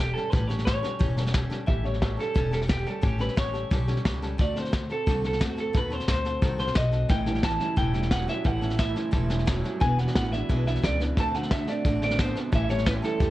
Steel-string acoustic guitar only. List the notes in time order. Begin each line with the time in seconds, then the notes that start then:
Already playing: G3
0.00 C#4 G4 A4
0.15 G3 C#4 G4 A4
0.31 A2 E3 G3 C#4 G4 A4
0.48 G3 C#4 G4 A4
0.66 G3 C#4 G4 A4
0.83 G3 C#4 G4 A4
0.99 A2 E3 G3 C#4 G4 A4
1.17 G3 C#4 G4 A4
1.34 G3 C#4 G4 A4
1.50 G3 C#4 G4 A4
1.66 A2 E3 G3 C#4 G4 A4
1.83 G3 C#4 G4 A4
2.00 G3 C#4 G4 A4
2.17 G3 C#4 G4 A4
2.34 A2 E3 G3 C#4 G4 A4
2.51 G3 C#4 G4 A4
2.67 G3 C#4 G4 A4
2.85 G3 C#4 G4 A4
3.01 A2 E3 G3 C#4 G4 A4
3.18 G3 C#4 G4 A4
3.35 G3 C#4 G4 A4
3.53 G3 C#4 G4 A4
3.71 A2 E3 G3 C#4 G4 A4
3.87 G3 C#4 G4 A4
4.05 G3 C#4 G4 A4
4.22 G3 C#4 G4 A4
4.38 D3 A3 C4 F#4 A4
4.56 C4 F#4 A4
4.71 A3 C4 F#4 A4
4.90 C4 F#4 A4
5.06 D3 A3 C4 F#4 A4
5.22 C4 F#4 A4
5.39 A3 C4 F#4 A4
5.57 C4 F#4 A4
5.73 D#3 A3 C4 F#4 A4
5.90 C4 F#4 A4
6.08 A3 C4 F#4 A4
6.25 C4 F#4 A4
6.42 D#3 A3 C4 F#4 A4
6.58 C4 F#4 A4
6.75 A3 C4 F#4 A4
6.92 C4 F#4 A4
7.09 A2 E3 G3 C#4 E4 A4
7.26 G3 C#4 E4 A4
7.42 G3 C#4 E4 A4
7.60 G3 C#4 E4 A4
7.76 A2 E3 G3 C#4 E4 A4
7.93 G3 C#4 E4 A4
8.11 G3 C#4 E4 A4
8.27 G3 C#4 E4 A4
8.44 A2 E3 G3 C#4 E4 A4
8.61 G3 C#4 E4 A4
8.77 G3 C#4 E4 A4
8.94 G3 C#4 E4 A4
9.11 A2 E3 G3 C#4 E4 A4
9.28 G3 C#4 E4 A4
9.45 G3 C#4 E4 A4
9.63 G3 C#4 E4 A4
9.80 E3 G#3 D4 E4 B4
9.98 D4 E4 B4
10.15 G#3 D4 E4 B4
10.32 D4 E4 B4
10.49 E3 G#3 D4 E4 B4
10.65 D4 E4 B4
10.82 G#3 D4 E4 B4
11.00 D4 E4 B4
11.17 D3 A3 C4 F#4 A4
11.34 C4 F#4 A4
11.51 A3 C4 F#4 A4
11.67 C4 F#4 A4
11.85 D3 A3 C4 F#4 A4
12.02 C4 F#4 A4
12.19 A3 C4 F#4 A4
12.36 C4 F#4 A4
12.52 A2 E3 G3 C#4 G4 A4
12.69 G3 C#4 G4 A4
12.85 G3 C#4 G4 A4
13.02 G3 C#4 G4 A4
13.20 A2 E3 G3 C#4 G4 A4